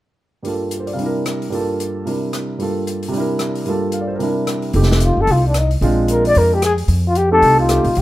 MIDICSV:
0, 0, Header, 1, 5, 480
1, 0, Start_track
1, 0, Key_signature, -1, "major"
1, 0, Tempo, 268577
1, 792, Time_signature, 4, 2, 24, 8
1, 14328, End_track
2, 0, Start_track
2, 0, Title_t, "Flugelhorn"
2, 0, Program_c, 0, 56
2, 9009, Note_on_c, 0, 65, 68
2, 9309, Note_on_c, 0, 69, 99
2, 9336, Note_off_c, 0, 65, 0
2, 9501, Note_on_c, 0, 65, 75
2, 9528, Note_off_c, 0, 69, 0
2, 9755, Note_off_c, 0, 65, 0
2, 9783, Note_on_c, 0, 62, 66
2, 9974, Note_on_c, 0, 63, 60
2, 10001, Note_off_c, 0, 62, 0
2, 10231, Note_off_c, 0, 63, 0
2, 10919, Note_on_c, 0, 70, 72
2, 11164, Note_off_c, 0, 70, 0
2, 11205, Note_on_c, 0, 74, 93
2, 11401, Note_on_c, 0, 70, 78
2, 11428, Note_off_c, 0, 74, 0
2, 11690, Note_on_c, 0, 67, 74
2, 11717, Note_off_c, 0, 70, 0
2, 11858, Note_off_c, 0, 67, 0
2, 11877, Note_on_c, 0, 68, 71
2, 12036, Note_off_c, 0, 68, 0
2, 12652, Note_on_c, 0, 65, 81
2, 12809, Note_on_c, 0, 67, 73
2, 12836, Note_off_c, 0, 65, 0
2, 13069, Note_off_c, 0, 67, 0
2, 13080, Note_on_c, 0, 69, 100
2, 13525, Note_off_c, 0, 69, 0
2, 13584, Note_on_c, 0, 65, 72
2, 14304, Note_off_c, 0, 65, 0
2, 14328, End_track
3, 0, Start_track
3, 0, Title_t, "Grand piano"
3, 0, Program_c, 1, 0
3, 761, Note_on_c, 1, 43, 45
3, 781, Note_on_c, 1, 55, 41
3, 808, Note_on_c, 1, 58, 39
3, 827, Note_on_c, 1, 65, 41
3, 856, Note_on_c, 1, 69, 48
3, 1326, Note_on_c, 1, 70, 40
3, 1431, Note_on_c, 1, 72, 39
3, 1501, Note_off_c, 1, 70, 0
3, 1556, Note_on_c, 1, 74, 47
3, 1603, Note_off_c, 1, 72, 0
3, 1668, Note_on_c, 1, 77, 45
3, 1691, Note_on_c, 1, 48, 46
3, 1692, Note_off_c, 1, 74, 0
3, 1711, Note_off_c, 1, 55, 0
3, 1737, Note_off_c, 1, 43, 0
3, 1737, Note_on_c, 1, 55, 46
3, 1761, Note_off_c, 1, 58, 0
3, 1770, Note_off_c, 1, 65, 0
3, 1785, Note_off_c, 1, 69, 0
3, 1786, Note_on_c, 1, 62, 47
3, 1819, Note_off_c, 1, 77, 0
3, 1832, Note_on_c, 1, 64, 43
3, 1890, Note_on_c, 1, 70, 56
3, 2660, Note_off_c, 1, 55, 0
3, 2677, Note_on_c, 1, 43, 52
3, 2682, Note_off_c, 1, 48, 0
3, 2687, Note_on_c, 1, 55, 47
3, 2712, Note_on_c, 1, 58, 51
3, 2730, Note_off_c, 1, 62, 0
3, 2739, Note_on_c, 1, 65, 48
3, 2753, Note_off_c, 1, 64, 0
3, 2761, Note_on_c, 1, 69, 59
3, 2782, Note_off_c, 1, 70, 0
3, 3648, Note_off_c, 1, 55, 0
3, 3656, Note_off_c, 1, 43, 0
3, 3673, Note_off_c, 1, 58, 0
3, 3674, Note_on_c, 1, 55, 42
3, 3687, Note_off_c, 1, 65, 0
3, 3688, Note_on_c, 1, 48, 44
3, 3691, Note_on_c, 1, 62, 39
3, 3698, Note_off_c, 1, 69, 0
3, 3701, Note_on_c, 1, 64, 40
3, 3709, Note_on_c, 1, 70, 46
3, 4609, Note_off_c, 1, 55, 0
3, 4612, Note_on_c, 1, 43, 46
3, 4636, Note_on_c, 1, 55, 41
3, 4641, Note_off_c, 1, 48, 0
3, 4643, Note_off_c, 1, 62, 0
3, 4646, Note_on_c, 1, 58, 38
3, 4648, Note_off_c, 1, 64, 0
3, 4652, Note_off_c, 1, 70, 0
3, 4668, Note_on_c, 1, 65, 40
3, 4689, Note_on_c, 1, 69, 51
3, 5510, Note_on_c, 1, 48, 56
3, 5548, Note_off_c, 1, 55, 0
3, 5575, Note_on_c, 1, 55, 53
3, 5584, Note_off_c, 1, 43, 0
3, 5601, Note_off_c, 1, 58, 0
3, 5612, Note_off_c, 1, 65, 0
3, 5619, Note_on_c, 1, 62, 52
3, 5622, Note_off_c, 1, 69, 0
3, 5673, Note_on_c, 1, 64, 54
3, 5711, Note_on_c, 1, 70, 58
3, 6513, Note_off_c, 1, 48, 0
3, 6526, Note_off_c, 1, 55, 0
3, 6528, Note_on_c, 1, 43, 48
3, 6553, Note_on_c, 1, 55, 46
3, 6558, Note_on_c, 1, 58, 43
3, 6568, Note_off_c, 1, 62, 0
3, 6581, Note_on_c, 1, 65, 44
3, 6595, Note_off_c, 1, 64, 0
3, 6610, Note_on_c, 1, 69, 56
3, 6614, Note_off_c, 1, 70, 0
3, 7034, Note_on_c, 1, 77, 39
3, 7170, Note_on_c, 1, 74, 45
3, 7235, Note_off_c, 1, 77, 0
3, 7283, Note_on_c, 1, 72, 47
3, 7353, Note_off_c, 1, 74, 0
3, 7425, Note_on_c, 1, 70, 49
3, 7436, Note_off_c, 1, 72, 0
3, 7489, Note_on_c, 1, 48, 52
3, 7491, Note_off_c, 1, 55, 0
3, 7502, Note_off_c, 1, 43, 0
3, 7517, Note_off_c, 1, 58, 0
3, 7518, Note_on_c, 1, 55, 50
3, 7528, Note_off_c, 1, 65, 0
3, 7543, Note_off_c, 1, 69, 0
3, 7543, Note_on_c, 1, 62, 50
3, 7548, Note_off_c, 1, 70, 0
3, 7558, Note_on_c, 1, 64, 49
3, 7575, Note_on_c, 1, 70, 54
3, 8462, Note_off_c, 1, 48, 0
3, 8477, Note_off_c, 1, 55, 0
3, 8489, Note_off_c, 1, 62, 0
3, 8490, Note_on_c, 1, 57, 53
3, 8497, Note_off_c, 1, 64, 0
3, 8504, Note_on_c, 1, 60, 49
3, 8505, Note_off_c, 1, 70, 0
3, 8506, Note_on_c, 1, 63, 54
3, 8508, Note_on_c, 1, 67, 63
3, 9806, Note_off_c, 1, 57, 0
3, 9813, Note_off_c, 1, 60, 0
3, 9814, Note_off_c, 1, 63, 0
3, 9815, Note_off_c, 1, 67, 0
3, 10403, Note_on_c, 1, 56, 68
3, 10410, Note_on_c, 1, 60, 55
3, 10419, Note_on_c, 1, 62, 54
3, 10426, Note_on_c, 1, 65, 68
3, 11722, Note_off_c, 1, 56, 0
3, 11725, Note_off_c, 1, 60, 0
3, 11730, Note_off_c, 1, 62, 0
3, 11733, Note_off_c, 1, 65, 0
3, 13067, Note_on_c, 1, 57, 61
3, 13078, Note_on_c, 1, 60, 54
3, 13086, Note_on_c, 1, 63, 57
3, 13098, Note_on_c, 1, 67, 68
3, 13707, Note_off_c, 1, 57, 0
3, 13712, Note_off_c, 1, 60, 0
3, 13717, Note_off_c, 1, 63, 0
3, 13722, Note_off_c, 1, 67, 0
3, 13755, Note_on_c, 1, 57, 64
3, 13764, Note_on_c, 1, 60, 55
3, 13772, Note_on_c, 1, 67, 64
3, 13774, Note_on_c, 1, 63, 55
3, 14011, Note_off_c, 1, 57, 0
3, 14016, Note_off_c, 1, 60, 0
3, 14020, Note_off_c, 1, 67, 0
3, 14021, Note_off_c, 1, 63, 0
3, 14328, End_track
4, 0, Start_track
4, 0, Title_t, "Upright bass"
4, 0, Program_c, 2, 32
4, 8468, Note_on_c, 2, 29, 81
4, 9185, Note_off_c, 2, 29, 0
4, 9237, Note_on_c, 2, 30, 61
4, 9419, Note_off_c, 2, 30, 0
4, 9426, Note_on_c, 2, 36, 81
4, 10342, Note_off_c, 2, 36, 0
4, 10389, Note_on_c, 2, 34, 77
4, 11303, Note_off_c, 2, 34, 0
4, 11364, Note_on_c, 2, 41, 77
4, 12271, Note_off_c, 2, 41, 0
4, 12294, Note_on_c, 2, 41, 81
4, 13214, Note_off_c, 2, 41, 0
4, 13263, Note_on_c, 2, 36, 81
4, 13980, Note_off_c, 2, 36, 0
4, 14021, Note_on_c, 2, 34, 67
4, 14208, Note_off_c, 2, 34, 0
4, 14238, Note_on_c, 2, 36, 83
4, 14328, Note_off_c, 2, 36, 0
4, 14328, End_track
5, 0, Start_track
5, 0, Title_t, "Drums"
5, 799, Note_on_c, 9, 46, 32
5, 977, Note_off_c, 9, 46, 0
5, 1270, Note_on_c, 9, 42, 44
5, 1449, Note_off_c, 9, 42, 0
5, 1559, Note_on_c, 9, 46, 30
5, 1738, Note_off_c, 9, 46, 0
5, 1765, Note_on_c, 9, 46, 33
5, 1944, Note_off_c, 9, 46, 0
5, 2246, Note_on_c, 9, 42, 42
5, 2250, Note_on_c, 9, 37, 54
5, 2425, Note_off_c, 9, 42, 0
5, 2429, Note_off_c, 9, 37, 0
5, 2536, Note_on_c, 9, 46, 31
5, 2715, Note_off_c, 9, 46, 0
5, 2722, Note_on_c, 9, 46, 33
5, 2901, Note_off_c, 9, 46, 0
5, 3217, Note_on_c, 9, 42, 44
5, 3396, Note_off_c, 9, 42, 0
5, 3696, Note_on_c, 9, 46, 34
5, 3875, Note_off_c, 9, 46, 0
5, 4166, Note_on_c, 9, 42, 43
5, 4169, Note_on_c, 9, 37, 53
5, 4344, Note_off_c, 9, 42, 0
5, 4348, Note_off_c, 9, 37, 0
5, 4642, Note_on_c, 9, 46, 34
5, 4820, Note_off_c, 9, 46, 0
5, 5133, Note_on_c, 9, 42, 41
5, 5311, Note_off_c, 9, 42, 0
5, 5409, Note_on_c, 9, 46, 34
5, 5588, Note_off_c, 9, 46, 0
5, 5604, Note_on_c, 9, 46, 38
5, 5783, Note_off_c, 9, 46, 0
5, 6059, Note_on_c, 9, 42, 45
5, 6063, Note_on_c, 9, 37, 56
5, 6238, Note_off_c, 9, 42, 0
5, 6242, Note_off_c, 9, 37, 0
5, 6352, Note_on_c, 9, 46, 31
5, 6531, Note_off_c, 9, 46, 0
5, 6535, Note_on_c, 9, 46, 33
5, 6714, Note_off_c, 9, 46, 0
5, 7005, Note_on_c, 9, 42, 45
5, 7184, Note_off_c, 9, 42, 0
5, 7509, Note_on_c, 9, 46, 33
5, 7688, Note_off_c, 9, 46, 0
5, 7989, Note_on_c, 9, 42, 44
5, 7993, Note_on_c, 9, 37, 57
5, 8168, Note_off_c, 9, 42, 0
5, 8172, Note_off_c, 9, 37, 0
5, 8261, Note_on_c, 9, 46, 31
5, 8440, Note_off_c, 9, 46, 0
5, 8459, Note_on_c, 9, 46, 41
5, 8632, Note_on_c, 9, 38, 29
5, 8638, Note_off_c, 9, 46, 0
5, 8787, Note_off_c, 9, 38, 0
5, 8787, Note_on_c, 9, 38, 42
5, 8940, Note_on_c, 9, 42, 49
5, 8966, Note_off_c, 9, 38, 0
5, 9119, Note_off_c, 9, 42, 0
5, 9423, Note_on_c, 9, 46, 43
5, 9602, Note_off_c, 9, 46, 0
5, 9905, Note_on_c, 9, 42, 52
5, 9908, Note_on_c, 9, 37, 57
5, 10083, Note_off_c, 9, 42, 0
5, 10087, Note_off_c, 9, 37, 0
5, 10201, Note_on_c, 9, 46, 34
5, 10380, Note_off_c, 9, 46, 0
5, 10407, Note_on_c, 9, 46, 39
5, 10586, Note_off_c, 9, 46, 0
5, 10872, Note_on_c, 9, 42, 49
5, 11050, Note_off_c, 9, 42, 0
5, 11169, Note_on_c, 9, 46, 38
5, 11345, Note_off_c, 9, 46, 0
5, 11345, Note_on_c, 9, 46, 43
5, 11524, Note_off_c, 9, 46, 0
5, 11834, Note_on_c, 9, 42, 55
5, 11838, Note_on_c, 9, 37, 61
5, 12013, Note_off_c, 9, 42, 0
5, 12017, Note_off_c, 9, 37, 0
5, 12115, Note_on_c, 9, 46, 36
5, 12294, Note_off_c, 9, 46, 0
5, 12297, Note_on_c, 9, 46, 43
5, 12476, Note_off_c, 9, 46, 0
5, 12783, Note_on_c, 9, 42, 45
5, 12962, Note_off_c, 9, 42, 0
5, 13268, Note_on_c, 9, 46, 40
5, 13447, Note_off_c, 9, 46, 0
5, 13740, Note_on_c, 9, 42, 53
5, 13744, Note_on_c, 9, 37, 61
5, 13919, Note_off_c, 9, 42, 0
5, 13922, Note_off_c, 9, 37, 0
5, 14020, Note_on_c, 9, 46, 34
5, 14199, Note_off_c, 9, 46, 0
5, 14213, Note_on_c, 9, 46, 42
5, 14328, Note_off_c, 9, 46, 0
5, 14328, End_track
0, 0, End_of_file